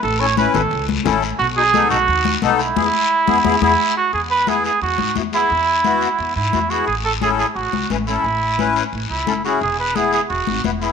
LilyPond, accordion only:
\new Staff \with { instrumentName = "Accordion" } { \time 4/4 \key e \major \tempo 4 = 175 r8 <cis' e' a'>8 <cis' e' b'>8 r4. <cis' e' a'>8 r8 | r8 <b dis' fis'>8 <b dis' a'>8 r4. <b dis' a'>8 r8 | <b e' gis'>8 r4 <b e' gis'>8 <b e' gis'>8 <b e' gis'>8 r4 | r4 <b e' gis'>8 r4. <b e' fis'>8 <b e' gis'>8 |
r4 <b e' fis'>8 r4. <b e' fis'>8 <b e' gis'>8 | r4 <cis' e' a'>8 r4. <cis' e' b'>8 <cis' e' a'>8 | r4 <cis' e' b'>8 r4. <cis' e' a'>8 <cis' e' gis'>8 | r4 <b e' gis'>8 r4. <b e' b'>8 <b e' gis'>8 | }